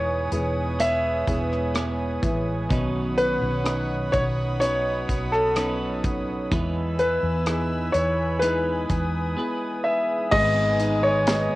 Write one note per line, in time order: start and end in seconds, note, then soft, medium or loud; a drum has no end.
0.00 0.28 E1 medium
0.00 0.81 E3 soft
0.00 2.19 E3 medium
0.00 0.78 G#3 soft
0.00 0.79 B3 medium
0.00 0.30 D#4 soft
0.00 1.91 D#4 medium
0.00 0.30 E4 soft
0.00 0.30 G#4 soft
0.00 0.79 G#4 medium
0.00 2.66 B4 medium
0.00 0.83 C#5 medium
0.00 2.66 C#5 medium
0.00 2.66 G#5 medium
0.00 2.66 D#6 medium
0.32 1.23 E1 medium
0.32 1.24 B3 soft
0.32 1.25 E4 soft
0.32 1.25 G#4 soft
0.32 closed hi-hat medium
0.79 1.73 G#3 soft
0.79 1.75 B3 soft
0.79 1.75 G#4 medium
0.79 2.19 E5 medium
0.79 closed hi-hat medium
1.27 2.19 E1 medium
1.27 2.20 B3 soft
1.27 2.20 E4 soft
1.27 2.20 G#4 medium
1.27 kick medium
1.27 closed hi-hat medium
1.52 cross-stick soft
1.74 2.70 G#3 medium
1.74 2.71 B3 medium
1.74 2.71 G#4 medium
1.74 cross-stick medium
1.74 closed hi-hat medium
2.22 2.67 A1 medium
2.22 2.69 E3 medium
2.22 kick medium
2.22 closed hi-hat medium
2.69 3.38 B1 medium
2.69 4.60 B2 medium
2.69 6.47 B2 medium
2.69 4.64 D#3 medium
2.69 4.59 F#3 medium
2.69 4.60 C#4 medium
2.69 4.62 D#4 medium
2.69 4.62 B4 medium
2.69 6.47 C#5 medium
2.69 6.48 F#5 medium
2.69 6.47 B5 medium
2.69 6.47 D#6 medium
2.69 kick medium
2.69 closed hi-hat medium
3.18 4.16 B4 medium
3.18 closed hi-hat medium
3.42 4.09 B1 medium
3.64 4.57 B3 soft
3.64 4.57 C#4 soft
3.64 4.58 D#4 soft
3.64 cross-stick medium
3.64 closed hi-hat medium
4.12 5.05 B1 medium
4.12 4.23 C#5 medium
4.12 kick medium
4.12 closed hi-hat medium
4.60 5.54 F#3 medium
4.60 5.53 B3 soft
4.60 5.53 C#4 soft
4.60 5.55 C#4 soft
4.60 5.53 D#4 medium
4.60 5.57 D#4 medium
4.60 5.57 B4 medium
4.60 5.34 C#5 medium
4.60 closed hi-hat medium
5.09 6.48 B1 medium
5.09 kick medium
5.09 closed hi-hat medium
5.32 6.00 A4 medium
5.32 cross-stick soft
5.56 6.51 F#3 medium
5.56 6.49 B3 soft
5.56 6.49 C#4 soft
5.56 6.52 C#4 medium
5.56 6.49 D#4 soft
5.56 6.52 D#4 medium
5.56 6.53 B4 medium
5.56 cross-stick medium
5.56 closed hi-hat medium
6.04 kick medium
6.04 closed hi-hat medium
6.52 7.19 E2 medium
6.52 6.99 E3 medium
6.52 10.28 E3 medium
6.52 6.99 G#3 medium
6.52 7.00 B3 medium
6.52 6.99 D#4 medium
6.52 10.29 B4 medium
6.52 6.98 B4 medium
6.52 10.29 G#5 medium
6.52 10.29 B5 medium
6.52 8.40 E6 loud
6.52 kick loud
6.52 closed hi-hat medium
6.99 8.42 B3 soft
6.99 8.43 D#4 soft
6.99 8.44 B4 soft
6.99 7.97 B4 medium
6.99 closed hi-hat medium
7.23 7.90 E2 medium
7.46 8.39 D#4 soft
7.46 8.39 E4 soft
7.46 8.39 G#4 soft
7.46 cross-stick medium
7.46 closed hi-hat medium
7.92 8.86 E2 medium
7.92 8.42 C#5 medium
7.92 closed hi-hat medium
8.39 9.36 G#3 soft
8.39 9.37 B3 soft
8.39 9.34 D#4 soft
8.39 10.34 D#4 soft
8.39 9.35 E4 soft
8.39 9.35 G#4 soft
8.39 9.79 B4 medium
8.39 10.30 D#6 medium
8.39 closed hi-hat medium
8.44 9.39 B4 soft
8.89 9.34 E2 medium
8.89 kick medium
8.89 closed hi-hat medium
9.37 10.33 G#3 soft
9.37 10.34 B3 medium
9.37 10.30 B3 soft
9.37 10.30 E4 soft
9.37 10.30 G#4 soft
9.37 10.35 B4 medium
9.84 10.33 E5 medium
10.31 11.47 G#1 loud
10.31 11.55 G#2 medium
10.31 11.55 D#3 medium
10.31 11.27 G#3 medium
10.31 11.55 G#3 medium
10.31 11.55 B3 medium
10.31 11.55 D#4 medium
10.31 11.55 G#4 medium
10.31 11.55 B4 medium
10.31 11.05 D#5 loud
10.31 11.55 D#5 medium
10.31 11.55 G#5 medium
10.31 11.55 D#6 medium
10.31 kick loud
10.31 crash loud
10.80 11.55 D#4 medium
10.80 closed hi-hat medium
11.03 11.55 C#5 medium
11.27 11.55 G#3 medium
11.27 snare loud
11.27 closed hi-hat medium